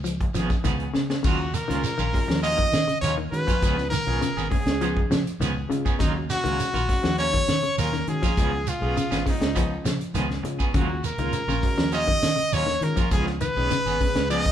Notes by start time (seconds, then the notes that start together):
Already playing: C#2
0.04 F3, closed hi-hat, shekere
0.20 muted clean electric guitar stroke, kick, closed hi-hat
0.34 G#1 F3 B3 C#4 G#4, snare, closed hi-hat, shekere
0.50 muted clean electric guitar stroke, kick, snare, shekere
0.64 C#2 D#3 F3 B3 C#4 G#4, kick, closed hi-hat, shekere
0.80 closed hi-hat
0.94 C#3, muted clean electric guitar stroke, snare, shekere
1.10 muted clean electric guitar stroke, snare, shekere
1.23 D#2 C#3 F#3 G#3 A#3 C#4 F4 F#4, kick, crash, shekere
1.39 muted clean electric guitar stroke
1.54 A#4, muted clean electric guitar stroke, closed hi-hat, shekere
1.68 C#2 D#3 G#3 A#3 C#4 F4, snare, closed hi-hat, shekere
1.84 muted clean electric guitar stroke, closed hi-hat, shekere
1.98 A#1 D#3 A#3 C#4 F4, shekere
2.13 G#3 C#4 F4, kick, open hi-hat, shekere
2.28 D#2 F3, muted clean electric guitar stroke, snare
2.43 F#3 A#3 C#4 F4 D#5, closed hi-hat, shekere
2.58 D#3, muted clean electric guitar stroke, kick
2.72 D#3, muted clean electric guitar stroke, snare, closed hi-hat, shekere
2.88 C#3, closed hi-hat, shekere
3.01 D#2 F#3 A#3 C#4 F4 C#5, closed hi-hat, shekere
3.18 D#3, muted clean electric guitar stroke
3.32 D#3 G#3 C#4 F#4 B4, muted clean electric guitar stroke, closed hi-hat, shekere
3.47 F3 A#3 C#4 F4, muted fingered electric bass stroke, kick, closed hi-hat, shekere
3.62 C#2 F3 G#3 B3 C#4 F4 G#4, kick, snare, closed hi-hat, shekere
3.78 muted clean electric guitar stroke, snare
3.90 D#3 A#4, muted clean electric guitar stroke, closed hi-hat, shekere
4.06 B1 G#3 B3 C#4 F4 G#4, shekere
4.21 C#3, muted clean electric guitar stroke, closed hi-hat, shekere
4.37 G#1 B3 C#4 G#4, shekere
4.50 C#3 G#3 C#4 G#4, kick, open hi-hat, shekere
4.66 C#2, muted clean electric guitar stroke, snare, closed hi-hat
4.81 F3 B3 C#4 G#4, closed hi-hat, shekere
4.97 muted clean electric guitar stroke, kick
5.10 C#3 F3, muted clean electric guitar stroke, snare, closed hi-hat, shekere
5.27 closed hi-hat, shekere
5.40 C#2 D#3 F3 B3 C#4 G#4, closed hi-hat, shekere
5.56 muted clean electric guitar stroke
5.69 C#3 G#3 C#4 F4, muted clean electric guitar stroke, closed hi-hat, shekere
5.85 B3 C#4 G#4, muted fingered electric bass stroke, kick, shekere
5.99 D#2 C#3 F#3 G#3 A#3 C#4 D#4 F4 F#4, muted clean electric guitar stroke, kick, closed hi-hat, shekere
6.14 muted clean electric guitar stroke
6.29 F#4, muted clean electric guitar stroke, snare, closed hi-hat, shekere
6.44 C#2 D#3 G#3 A#3 C#4 F4 F#4, closed hi-hat, shekere
6.59 muted clean electric guitar stroke, closed hi-hat, shekere
6.74 A#1 D#3 A#3 F4, shekere
6.88 G#3 C#4 F#4, kick, open hi-hat, shekere
7.03 D#2 F3, muted clean electric guitar stroke, snare
7.18 A#3 C#4 C#5, muted clean electric guitar stroke, closed hi-hat, shekere
7.33 D#3, muted clean electric guitar stroke, kick
7.48 D#3, muted clean electric guitar stroke, snare, closed hi-hat, shekere
7.63 C#3, closed hi-hat, shekere
7.78 D#2 F#3 A#3 C#4 F4 A#4, closed hi-hat, shekere
7.93 D#3, muted clean electric guitar stroke, snare
8.07 D#3 G#3 C#4 F#4 G#4, muted clean electric guitar stroke, closed hi-hat, shekere
8.22 F3 A#3 C#4 F4, kick, snare, closed hi-hat, shekere
8.37 C#2 F3 G#3 B3 C#4 F4 G#4, kick, closed hi-hat, shekere
8.52 muted clean electric guitar stroke
8.67 F4, muted clean electric guitar stroke, closed hi-hat, shekere
8.81 B1 G#3 B3 C#4 G#4, shekere
8.96 C#3, muted clean electric guitar stroke, closed hi-hat, shekere
9.11 G#1 B3 C#4 G#4, snare, shekere
9.26 C#3 G#3 C#4 D#4 F4, kick, snare, open hi-hat, shekere
9.41 C#2, muted clean electric guitar stroke, snare, closed hi-hat
9.55 F3 B3 C#4, muted clean electric guitar stroke, kick, closed hi-hat, shekere
9.70 muted clean electric guitar stroke
9.84 C#3 F3, muted clean electric guitar stroke, snare, closed hi-hat, shekere
10.00 closed hi-hat, shekere
10.14 C#2 D#3 F3 B3 C#4 G#4, snare, closed hi-hat, shekere
10.29 muted clean electric guitar stroke, snare
10.43 C#3 G#3 C#4 F4, muted clean electric guitar stroke, closed hi-hat, shekere
10.59 B3 C#4 G#4, muted fingered electric bass stroke, kick, shekere
10.73 D#2 C#3 F#3 G#3 A#3 C#4 F4 F#4, kick, closed hi-hat, shekere
10.89 muted clean electric guitar stroke
11.04 A#4, muted clean electric guitar stroke, closed hi-hat, shekere
11.18 C#2 D#3 G#3 A#3 C#4 F4, closed hi-hat, shekere
11.32 muted clean electric guitar stroke, closed hi-hat, shekere
11.48 A#1 C#3 A#3 C#4 F4, shekere
11.61 G#3 C#4 F#4, kick, open hi-hat, shekere
11.78 D#2 F3, muted clean electric guitar stroke, snare
11.92 F#3 A#3 C#4 F4 D#5, closed hi-hat, shekere
12.07 D#3, muted clean electric guitar stroke, kick
12.23 D#3, muted clean electric guitar stroke, snare, closed hi-hat, shekere
12.36 C#3, closed hi-hat, shekere
12.52 D#2 F#3 A#3 C#4 F4 C#5, closed hi-hat, shekere
12.66 D#3, muted clean electric guitar stroke, snare
12.81 D#3 G#3 C#4 F4 A#4, muted clean electric guitar stroke, closed hi-hat, shekere
12.96 F3 A#3 C#4 F4, muted fingered electric bass stroke, kick, closed hi-hat, shekere
13.11 C#2 F3 G#3 B3 C#4 F4 G#4, kick, closed hi-hat, shekere
13.26 muted clean electric guitar stroke, snare
13.40 D#3 B4, muted clean electric guitar stroke, closed hi-hat, shekere
13.56 B1 G#3 B3 C#4 D#4 G#4, shekere
13.71 C#3, muted clean electric guitar stroke, closed hi-hat, shekere
13.85 G#1 B3 C#4 G#4, shekere
14.00 C#3 G#3 C#4 G#4, kick, open hi-hat, shekere
14.15 C#2, muted clean electric guitar stroke, snare, closed hi-hat
14.30 F3 B3 C#4 G#4 D#5, closed hi-hat, shekere
14.46 muted clean electric guitar stroke, kick